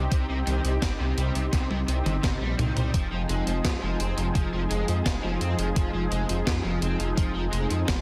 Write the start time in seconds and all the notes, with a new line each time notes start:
Already playing: C4 D#4 G4
0.12 C2 C3, kick, closed hi-hat
0.29 C2 C3
0.47 C2 D#3, closed hi-hat
0.65 C2 C3, closed hi-hat
0.82 G1 C4, kick, snare, closed hi-hat
1.00 C2 C3
1.18 C2 G3, closed hi-hat
1.35 C2 C3, closed hi-hat
1.53 C2 C3, kick, snare, closed hi-hat
1.70 C2 C3, high tom
1.88 C2 C3, closed hi-hat
2.06 G1 C3, closed hi-hat, mid tom
2.23 G1 C3, kick, snare, closed hi-hat
2.41 A#1 G3
2.58 C2 D#3, closed hi-hat, mid tom
2.76 C2 G3, closed hi-hat, mid tom
2.94 F1 F3 G#3 D#4 G#4, kick, closed hi-hat
3.12 F1 F3
3.29 F1 G#3, closed hi-hat
3.47 F1 F3, closed hi-hat
3.65 F2 F4, kick, snare, closed hi-hat
3.82 F1 F3
4.00 F1 C4, closed hi-hat
4.18 F1 F3, closed hi-hat
4.35 F1 F3, kick, closed hi-hat
4.53 F1 F3
4.70 F1 G#3, closed hi-hat
4.88 F2 F3, closed hi-hat
5.06 F1 F4, kick, snare, closed hi-hat
5.24 F1 F3
5.41 F2 C4, closed hi-hat
5.59 F1 F3, closed hi-hat
5.76 F1 F3, kick, closed hi-hat
5.94 F1 F3
6.12 F1 G#3, closed hi-hat
6.29 F1 F3, closed hi-hat
6.47 F2 F4, kick, snare, closed hi-hat
6.64 F1 F3
6.82 F1 C4, closed hi-hat
6.99 F1 F3, closed hi-hat
7.17 F1 F3, kick, closed hi-hat
7.35 F1 F3
7.52 F1 G#3, closed hi-hat
7.70 F2 F3, closed hi-hat
7.88 F1 F4, kick, snare, closed hi-hat